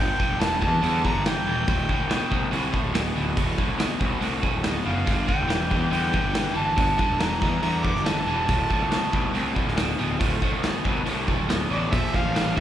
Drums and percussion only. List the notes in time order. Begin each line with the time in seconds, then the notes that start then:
0.20 kick
0.41 snare, open hi-hat
0.62 kick
0.83 open hi-hat
1.05 kick
1.26 snare, open hi-hat
1.68 kick, open hi-hat
1.89 kick
2.10 snare, open hi-hat
2.32 kick
2.53 open hi-hat
2.74 kick
2.95 snare, open hi-hat
3.37 kick, open hi-hat
3.58 kick
3.80 snare, open hi-hat
4.01 kick
4.22 open hi-hat
4.43 kick
4.64 snare, open hi-hat
5.07 kick, open hi-hat
5.29 kick
5.50 snare, open hi-hat
5.71 kick
5.93 open hi-hat
6.14 kick
6.35 snare, open hi-hat
6.78 kick, open hi-hat
6.99 kick
7.20 snare, open hi-hat
7.42 kick
7.63 open hi-hat
7.85 kick
7.96 snare
8.06 snare, open hi-hat
8.48 kick, open hi-hat
8.70 kick
8.92 snare, open hi-hat
9.13 kick
9.35 open hi-hat
9.56 kick
9.68 snare
9.77 snare, open hi-hat
10.20 kick, open hi-hat
10.42 kick
10.63 snare, open hi-hat
10.85 kick
11.07 open hi-hat
11.28 kick
11.50 snare, open hi-hat
11.93 kick, open hi-hat
12.14 kick
12.36 snare, open hi-hat